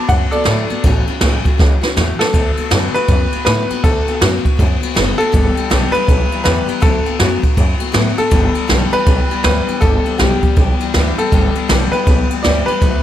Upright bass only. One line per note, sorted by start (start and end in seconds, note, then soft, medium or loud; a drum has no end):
0.09 0.25 F#2 loud
0.33 muted upright bass stroke medium
0.47 0.63 A2 medium
0.71 muted upright bass stroke medium
0.84 1.01 A1 loud
1.08 muted upright bass stroke medium
1.22 1.38 C#2 medium
1.59 1.76 C#2 loud
1.83 muted upright bass stroke medium
1.97 2.13 E2 medium
2.20 muted upright bass stroke medium
2.34 2.50 D2 medium
2.58 muted upright bass stroke medium
2.71 2.88 F#2 medium
2.95 muted upright bass stroke medium
3.09 3.25 F#2 loud
3.33 muted upright bass stroke medium
3.47 3.63 A2 medium
3.71 muted upright bass stroke medium
3.84 4.00 D2 medium
4.08 muted upright bass stroke medium
4.22 4.38 F#2 medium
4.45 muted upright bass stroke medium
4.59 4.75 F#2 loud
4.83 muted upright bass stroke medium
4.97 5.13 F#1 medium
5.21 muted upright bass stroke medium
5.34 5.50 G1 loud
5.58 muted upright bass stroke medium
5.71 5.88 B1 medium
5.95 muted upright bass stroke medium
6.09 6.25 B1 loud
6.46 6.62 E2 medium
6.69 muted upright bass stroke medium
6.83 6.99 D2 medium
7.07 muted upright bass stroke medium
7.20 7.37 F#2 medium
7.44 muted upright bass stroke medium
7.57 7.74 F#2 loud
7.81 muted upright bass stroke medium
7.95 8.12 A2 medium
8.19 muted upright bass stroke medium
8.32 8.48 G1 medium
8.56 muted upright bass stroke medium
8.70 8.86 B1 medium
8.94 muted upright bass stroke medium
9.07 9.24 B1 loud
9.31 muted upright bass stroke medium
9.44 9.61 D2 medium
9.68 muted upright bass stroke medium
9.82 9.99 G1 loud
10.20 10.36 B1 medium
10.43 muted upright bass stroke medium
10.57 10.74 B1 loud
10.81 muted upright bass stroke medium
10.95 11.11 D2 medium
11.32 11.49 G1 loud
11.56 muted upright bass stroke medium
11.70 11.86 B1 medium
12.07 12.23 B1 loud
12.32 muted upright bass stroke medium
12.45 12.62 D2 medium
12.69 muted upright bass stroke medium
12.82 12.98 D2 medium